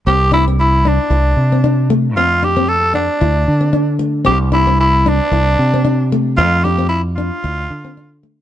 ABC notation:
X:1
M:4/4
L:1/16
Q:"Swing 16ths" 1/4=114
K:C
V:1 name="Tenor saxophone"
G2 E2 E2 D8 z2 | F2 G2 A2 D8 z2 | G2 E2 E2 D8 z2 | F2 G2 E2 F8 z2 |]
V:2 name="Steel-string acoustic guitar"
C2 D C2 z D2 E2 z C D2 A,2 | C2 D C2 z D2 E2 z C D2 A,2 | C2 D C2 z D2 E2 z C D2 A,2 | C2 D C2 z D2 E2 z C D2 A,2 |]
V:3 name="Fingered electric bass" clef=bass
C,,8 C,,2 C,6 | F,,8 D,,2 D,6 | C,,8 C,,2 C,6 | F,,8 D,,2 D,6 |]